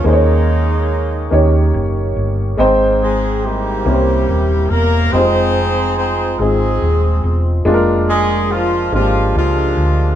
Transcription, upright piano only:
<<
  \new Staff \with { instrumentName = "Upright piano" } { \time 6/8 \key ees \mixolydian \tempo 4. = 47 <bes des' ees' aes' c'' des''>4 r8 <bes des' ees' g' des''>4 r8 | <aes c' ees' c'' g''>4 r8 <bes des' e' g' bes' c''>4 r8 | <g aes c' ees' f' c''>4 r8 <aes c' ees' f' aes'>4 r8 | <aes bes d' f' aes' bes'>4 r8 <aes bes d' f' g'>4 r8 | }
  \new Staff \with { instrumentName = "Upright piano" } { \clef bass \time 6/8 \key ees \mixolydian ees4. ees4. | aes,4. c4. | r2. | r2. | }
>>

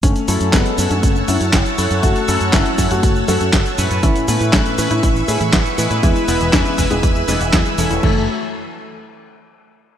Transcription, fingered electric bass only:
\new Staff \with { instrumentName = "Fingered electric bass" } { \clef bass \time 4/4 \key fis \minor \tempo 4 = 120 fis,,16 r16 fis,16 fis,16 fis,,16 r16 fis,16 fis,16 fis,,16 r16 fis,16 fis,16 fis,,16 r16 fis,16 fis,16 | fis,,16 r16 fis,16 fis,16 fis,,16 r16 fis,16 fis,16 fis,,16 r16 fis,16 fis,16 fis,,16 r16 fis,16 fis,16 | a,,16 r16 a,16 a,16 a,,16 r16 a,16 a,16 a,,16 r16 a,16 a,16 a,,16 r16 a,16 a,16 | e,16 r16 e,,16 e,,16 e,16 r16 e,,16 e,,16 e,16 r16 e,,16 e,,16 e,16 r16 e,,16 e,,16 |
fis,,8 r2. r8 | }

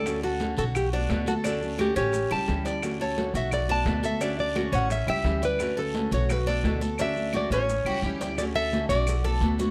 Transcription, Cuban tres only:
\new Staff \with { instrumentName = "Cuban tres" } { \time 4/4 \key d \major \tempo 4 = 173 d''8 a'4 fis'4 d'4 a'8 | d'4 fis'8 cis'4 g'4 d''8~ | d''8 a'4 fis'4 d'4 a'8 | d'4 fis'8 cis'4 g'4 d''8~ |
d''8 a'4 fis'4 d'4 a'8 | d'4 fis'8 cis'4 g'4 d''8 | r8 a'4 fis'4 a'4 fis'8 | }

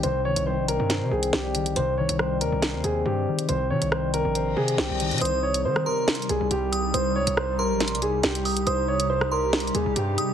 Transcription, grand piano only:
\new Staff \with { instrumentName = "Grand piano" } { \time 4/4 \key c \phrygian \tempo 4 = 139 c''8 des''8 c''8 bes'4 aes'8 g'4 | c''8 des''8 c''8 bes'4 aes'8 g'4 | c''8 des''8 c''8 bes'4 aes'8 g'4 | c''8 des''8 c''8 bes'4 aes'8 g'4 |
c''8 des''8 c''8 bes'4 aes'8 g'4 | c''8 des''8 c''8 bes'4 aes'8 g'4 | }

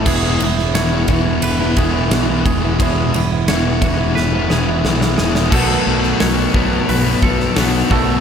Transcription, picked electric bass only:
\new Staff \with { instrumentName = "Picked electric bass" } { \clef bass \time 4/4 \key b \mixolydian \tempo 4 = 88 e,,8 e,,8 e,,8 e,,8 e,,8 e,,8 b,,8 e,,8 | e,,8 e,,8 e,,8 e,,8 e,,8 e,,8 b,,8 e,,8 | b,,8 b,,8 b,,8 b,,8 b,,8 b,,8 b,,8 b,,8 | }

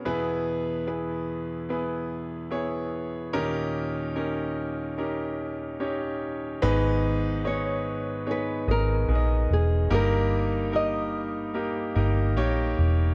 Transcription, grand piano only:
<<
  \new Staff \with { instrumentName = "Grand piano" } { \time 4/4 \key gis \minor \tempo 4 = 73 <b e' gis' b'>4 <b e' gis' b'>4 <b e' gis' b'>4 <b e' gis' cis''>4 | <cis' dis' g' ais'>4 <cis' dis' g' ais'>4 <cis' dis' g' ais'>4 <cis' dis' g' cis''>4 | <b dis' gis' b'>4 <b dis' gis' cis''>4 <b dis' gis' cis''>8 <b dis' gis' dis''>8 <b dis' gis' ais' dis''>4 | <ais dis' g' ais'>4 <ais dis' g' ais'>4 <ais dis' g' ais'>8 <ais dis' g' ais'>8 <ais dis' g' cis''>4 | }
  \new Staff \with { instrumentName = "Grand piano" } { \clef bass \time 4/4 \key gis \minor <e, b,>1 | <dis, ais,>1 | <gis, dis>4. r2 r8 | <g, g>4. r2 r8 | }
>>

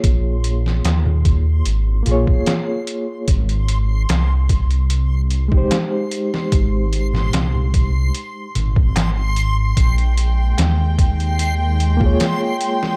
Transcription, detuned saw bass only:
\new Staff \with { instrumentName = "Detuned saw bass" } { \clef bass \time 4/4 \key bes \dorian \tempo 4 = 74 bes,,4 ees,4 aes,,8 bes,,8 r4 | aes,,4 c,2 r4 | aes,,4 c,4 r8 aes,,4. | bes,,4 ees,2 r4 | }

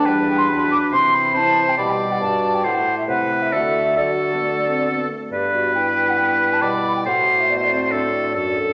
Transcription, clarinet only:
\new Staff \with { instrumentName = "Clarinet" } { \time 4/4 \key g \major \tempo 4 = 138 d'4 d'4 c'4 e'4 | g'4 fis'4 e'2 | fis'4 fis'2~ fis'8 r8 | g'8 fis'8 e'2. |
fis'2. fis'8 a'8 | }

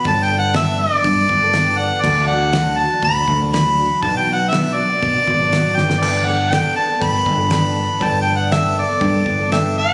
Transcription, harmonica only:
\new Staff \with { instrumentName = "Harmonica" } { \time 4/4 \key g \lydian \tempo 4 = 120 \tuplet 3/2 { a''8 g''8 fis''8 } e''8 d''2 fis''8 | d''8 fis''4 a''8 b''4 b''4 | \tuplet 3/2 { a''8 g''8 fis''8 } e''8 d''2 g''8 | d''8 fis''8 g''8 a''8 b''4 b''4 |
\tuplet 3/2 { a''8 g''8 fis''8 } e''8 d''4. e''8 fis''8 | }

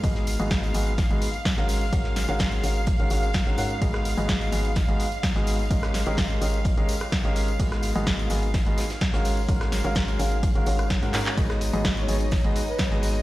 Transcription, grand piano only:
\new Staff \with { instrumentName = "Grand piano" } { \time 4/4 \key gis \dorian \tempo 4 = 127 <gis, b fis' gis' dis''>8. <gis, b fis' gis' dis''>8. <gis, b fis' gis' dis''>16 r8 <gis, b fis' gis' dis''>16 r8. <gis cis' fis' ais' eis''>8 r16 | <gis cis' fis' ais' eis''>8. <gis cis' fis' ais' eis''>8. <gis cis' fis' ais' eis''>16 r8 <gis cis' fis' ais' eis''>16 <gis cis' fis' ais' eis''>16 r8 <gis cis' fis' ais' fis''>16 <cis' fis' ais' fis''>16 r16 | <gis, b fis' gis' dis''>8. <gis, b fis' gis' dis''>8. <gis, b fis' gis' dis''>16 r8 <gis, b fis' gis' dis''>16 r8. <gis, b fis' gis' dis''>8 r16 | <gis cis' g' ais' dis''>8. <gis cis' g' ais' dis''>8. <gis cis' g' ais' dis''>16 r8 <gis cis' g' ais' dis''>16 r8. <gis cis' g' ais' dis''>8 r16 |
<gis, b fis' gis' dis''>8. <gis, b fis' gis' dis''>8. <gis, b fis' gis' dis''>16 r8 <gis, b fis' gis' dis''>16 r8. <gis cis' fis' ais' eis''>8 r16 | <gis cis' fis' ais' eis''>8. <gis cis' fis' ais' eis''>8. <gis cis' fis' ais' eis''>16 r8 <gis cis' fis' ais' eis''>16 <gis cis' fis' ais' eis''>16 r8 <gis cis' fis' ais' fis''>16 <cis' fis' ais' fis''>16 r16 | <gis, b fis' gis' dis''>8. <gis, b fis' gis' dis''>8. <gis, b fis' gis' dis''>16 r8 <gis, b fis' gis' dis''>16 r8. <gis, b fis' gis' dis''>8 r16 | }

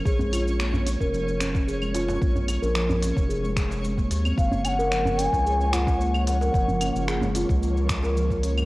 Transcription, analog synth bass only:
\new Staff \with { instrumentName = "Analog synth bass" } { \clef bass \time 4/4 \key bes \minor \tempo 4 = 111 bes,,4.~ bes,,16 f,,2~ f,,16 | bes,,8. bes,,4 f,,4.~ f,,16 ees,8 | ges,,4.~ ges,,16 des,2~ des,16 | ges,,8. ges,,4 des,2~ des,16 | }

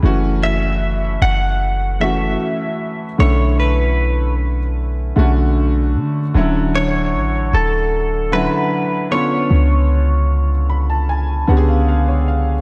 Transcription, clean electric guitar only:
\new Staff \with { instrumentName = "Clean electric guitar" } { \time 4/4 \key fis \minor \tempo 4 = 76 r8 e''4 fis''4 e''4. | cis''8 b'4 r2 r8 | r8 cis''4 a'4 b'4 cis''8~ | cis''2. r4 | }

